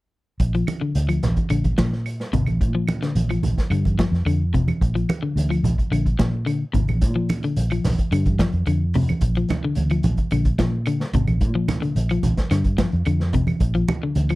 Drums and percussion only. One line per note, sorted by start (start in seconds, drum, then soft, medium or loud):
0.40 kick medium
0.40 closed hi-hat medium
0.55 closed hi-hat soft
0.67 closed hi-hat medium
0.67 high conga medium
0.67 claves medium
0.95 closed hi-hat medium
1.09 closed hi-hat soft
1.09 claves medium
1.23 snare soft
1.23 closed hi-hat soft
1.23 high conga medium
1.23 low conga medium
1.36 kick medium
1.36 closed hi-hat soft
1.36 high conga medium
1.50 closed hi-hat medium
1.50 claves medium
1.64 kick medium
1.64 closed hi-hat soft
1.64 high conga medium
1.78 kick medium
1.78 snare medium
1.78 closed hi-hat soft
1.78 high conga medium
1.93 snare soft
2.06 closed hi-hat medium
2.06 claves medium
2.20 snare soft
2.33 kick medium
2.33 closed hi-hat soft
2.33 low conga medium
2.46 closed hi-hat soft
2.46 high conga medium
2.46 claves medium
2.61 kick medium
2.61 closed hi-hat medium
2.88 closed hi-hat soft
2.88 high conga medium
2.88 claves medium
3.02 snare soft
3.02 closed hi-hat soft
3.15 closed hi-hat medium
3.15 high conga medium
3.30 closed hi-hat soft
3.30 claves medium
3.43 closed hi-hat soft
3.43 high conga medium
3.43 low conga medium
3.58 kick medium
3.58 snare soft
3.58 closed hi-hat soft
3.71 closed hi-hat medium
3.71 claves medium
3.85 kick medium
3.85 closed hi-hat soft
3.85 high conga medium
3.99 kick medium
3.99 snare medium
3.99 closed hi-hat soft
3.99 high conga medium
4.14 snare soft
4.14 closed hi-hat soft
4.26 closed hi-hat medium
4.26 claves medium
4.54 kick medium
4.54 closed hi-hat soft
4.54 low conga medium
4.68 closed hi-hat soft
4.68 high conga medium
4.68 claves medium
4.81 kick medium
4.81 closed hi-hat medium
4.96 closed hi-hat soft
5.09 closed hi-hat soft
5.09 high conga medium
5.09 claves medium
5.37 closed hi-hat medium
5.37 high conga medium
5.51 closed hi-hat soft
5.51 claves medium
5.64 closed hi-hat medium
5.64 high conga medium
5.64 low conga medium
5.78 kick medium
5.78 closed hi-hat soft
5.93 closed hi-hat medium
5.93 claves medium
6.06 kick medium
6.06 closed hi-hat soft
6.19 kick medium
6.19 snare medium
6.19 closed hi-hat soft
6.19 high conga medium
6.47 closed hi-hat medium
6.47 claves medium
6.74 kick medium
6.74 closed hi-hat soft
6.74 low conga medium
6.88 closed hi-hat soft
6.88 high conga medium
6.88 claves medium
7.01 kick medium
7.01 closed hi-hat medium
7.29 closed hi-hat medium
7.29 high conga medium
7.29 claves medium
7.43 closed hi-hat soft
7.56 closed hi-hat medium
7.71 closed hi-hat soft
7.71 claves medium
7.84 snare soft
7.84 open hi-hat medium
7.84 high conga medium
7.84 low conga medium
7.99 kick medium
7.99 closed hi-hat soft
8.12 closed hi-hat medium
8.12 claves medium
8.25 kick medium
8.25 closed hi-hat soft
8.25 high conga medium
8.39 kick medium
8.39 snare medium
8.39 closed hi-hat soft
8.39 high conga medium
8.53 closed hi-hat soft
8.66 closed hi-hat medium
8.66 claves medium
8.94 open hi-hat medium
8.94 low conga medium
9.08 closed hi-hat soft
9.08 high conga medium
9.08 claves medium
9.21 kick medium
9.21 closed hi-hat medium
9.35 closed hi-hat soft
9.49 snare soft
9.49 closed hi-hat soft
9.49 high conga medium
9.49 low conga medium
9.49 claves medium
9.75 closed hi-hat medium
9.75 high conga medium
9.90 closed hi-hat soft
9.90 claves medium
10.03 closed hi-hat soft
10.03 high conga medium
10.03 low conga medium
10.17 kick medium
10.17 closed hi-hat soft
10.31 closed hi-hat medium
10.31 claves medium
10.45 kick medium
10.45 closed hi-hat soft
10.59 kick medium
10.59 snare medium
10.59 closed hi-hat soft
10.59 high conga medium
10.86 closed hi-hat medium
10.86 claves medium
11.00 snare soft
11.13 kick medium
11.13 closed hi-hat soft
11.13 low conga medium
11.27 closed hi-hat soft
11.27 high conga medium
11.27 claves medium
11.41 kick medium
11.41 closed hi-hat medium
11.68 snare soft
11.68 closed hi-hat medium
11.68 high conga medium
11.68 low conga medium
11.68 claves medium
11.83 closed hi-hat soft
11.96 closed hi-hat medium
12.09 closed hi-hat soft
12.09 claves medium
12.23 closed hi-hat soft
12.23 high conga medium
12.23 low conga medium
12.37 kick medium
12.37 snare soft
12.37 closed hi-hat soft
12.51 snare soft
12.51 closed hi-hat medium
12.51 claves medium
12.64 kick medium
12.64 closed hi-hat soft
12.78 kick medium
12.78 snare medium
12.78 closed hi-hat medium
12.78 high conga loud
12.92 closed hi-hat soft
13.05 closed hi-hat medium
13.05 claves medium
13.20 snare soft
13.33 kick medium
13.33 closed hi-hat soft
13.33 low conga medium
13.47 closed hi-hat soft
13.47 high conga medium
13.47 claves medium
13.60 kick medium
13.60 closed hi-hat medium
13.74 closed hi-hat soft
13.88 closed hi-hat soft
13.88 high conga loud
13.88 low conga medium
13.88 claves medium
14.15 closed hi-hat medium
14.15 high conga medium
14.29 closed hi-hat soft
14.29 claves medium